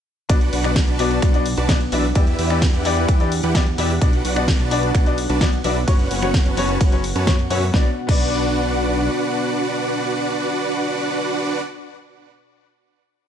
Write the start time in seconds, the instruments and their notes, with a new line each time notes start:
0.29 analog synth bass B1, grand piano B2 B3 D4 F#4 D5, analog synth pad B3 D4 F#5, supersaw synth D4 F#4 B4 D5 F#5, kick, closed hi-hat, ride
0.41 closed hi-hat
0.53 analog synth bass B1, supersaw synth D4 F#4 B4 D5 F#5, open hi-hat
0.64 grand piano B2 B3 D4 F#4 D5, finger snap, closed hi-hat
0.76 kick, snare, closed hi-hat, ride
0.88 analog synth bass B1, supersaw synth D4 F#4 B4 D5 A5, closed hi-hat
0.99 grand piano B2 B3 D4 F#4 D5, open hi-hat
1.11 closed hi-hat
1.22 analog synth bass B1, supersaw synth D4 F#4 B4 D5 F#5, finger snap, kick, closed hi-hat, ride
1.34 grand piano B2 B3 D4 F#4 D5, closed hi-hat
1.46 open hi-hat
1.57 analog synth bass B1, supersaw synth D4 F#4 B4 D5 A5, closed hi-hat
1.69 grand piano B2 B3 D4 F#4 D5, kick, snare, closed hi-hat, ride
1.81 closed hi-hat
1.92 analog synth bass B1, grand piano E3 B3 D4 F#4 D5, supersaw synth D4 F#4 B4 D5 E5, open hi-hat
2.15 analog synth bass E2, grand piano E3 B3 E4 G4 D5, analog synth pad E3 G4, supersaw synth E4 G4 B4 D5 E5, kick, closed hi-hat, ride
2.27 closed hi-hat
2.39 analog synth bass E2, supersaw synth E4 G4 B4 D5 E5, open hi-hat
2.50 grand piano E3 B3 E4 G4 D5, finger snap, closed hi-hat
2.62 kick, snare, closed hi-hat, ride
2.74 analog synth bass E2, supersaw synth E4 G4 B4 D5 F#5, closed hi-hat
2.85 grand piano E3 B3 E4 G4 D5, open hi-hat
2.97 closed hi-hat
3.08 analog synth bass E2, supersaw synth E4 G4 B4 D5 E5, kick, closed hi-hat, ride
3.20 grand piano E3 B3 E4 G4 D5, closed hi-hat
3.32 open hi-hat
3.43 analog synth bass E2, supersaw synth E4 G4 B4 D5 F#5, closed hi-hat
3.55 grand piano E3 B3 E4 G4 D5, finger snap, kick, snare, closed hi-hat, ride
3.67 closed hi-hat
3.78 analog synth bass E2, grand piano B2 B3 E4 G4 D5, supersaw synth E4 G4 B4 D5 E5, open hi-hat
4.01 analog synth bass B1, grand piano B2 B3 D4 F#4 D5, analog synth pad B3 D4, supersaw synth D4 F#4 B4 D5 F#5, kick, closed hi-hat, ride
4.13 closed hi-hat
4.25 analog synth bass B1, supersaw synth D4 F#4 B4 D5 F#5, open hi-hat
4.36 grand piano B2 B3 D4 F#4 D5, finger snap, closed hi-hat
4.48 kick, snare, closed hi-hat, ride
4.60 analog synth bass B1, supersaw synth D4 F#4 B4 D5 A5, closed hi-hat
4.71 grand piano B2 B3 D4 F#4 D5, open hi-hat
4.83 closed hi-hat
4.95 analog synth bass B1, supersaw synth D4 F#4 B4 D5 F#5, finger snap, kick, closed hi-hat, ride
5.06 grand piano B2 B3 D4 F#4 D5, closed hi-hat
5.18 open hi-hat
5.30 analog synth bass B1, supersaw synth D4 F#4 B4 D5 A5, closed hi-hat
5.41 grand piano B2 B3 D4 F#4 D5, kick, snare, closed hi-hat, ride
5.53 closed hi-hat
5.64 analog synth bass B1, grand piano F#3 B3 D4 F#4 D5, supersaw synth D4 F#4 B4 D5 E5, open hi-hat
5.87 analog synth bass F#1, grand piano F#3 B3 C#4 F#4 C#5, supersaw synth C#4 F#4 B4 C#5 F#5, analog synth pad C#4, kick, closed hi-hat, ride
5.99 closed hi-hat
6.11 analog synth bass F#1, supersaw synth C#4 F#4 B4 C#5 F#5, open hi-hat
6.22 grand piano F#3 B3 C#4 F#4 C#5, finger snap, closed hi-hat
6.34 kick, snare, closed hi-hat, ride
6.46 analog synth bass F#1, supersaw synth C#4 F#4 B4 C#5 A5, closed hi-hat
6.57 grand piano F#3 B3 C#4 F#4 C#5, open hi-hat
6.69 closed hi-hat
6.81 analog synth bass F#1, supersaw synth C#4 F#4 B4 C#5 F#5, kick, closed hi-hat, ride
6.92 grand piano F#3 B3 C#4 F#4 C#5, closed hi-hat
7.04 open hi-hat
7.16 analog synth bass F#2, supersaw synth C#4 F#4 B4 C#5 A5, closed hi-hat
7.27 grand piano F#3 B3 C#4 F#4 C#5, finger snap, kick, snare, closed hi-hat, ride
7.39 closed hi-hat
7.50 analog synth bass F#2, grand piano B2 B3 C#4 F#4 C#5, supersaw synth C#4 F#4 B4 C#5 E5, open hi-hat
7.72 analog synth bass B1, analog synth pad B2 B3 D4 F#4 F#5, grand piano B3 D4 F#4 D5, supersaw synth D4 F#4 B4 D5 F#5, kick, snare
8.07 analog synth bass B1, grand piano B3 D4 F#4 D5, supersaw synth D4 F#4 B4 D5 F#5, kick, crash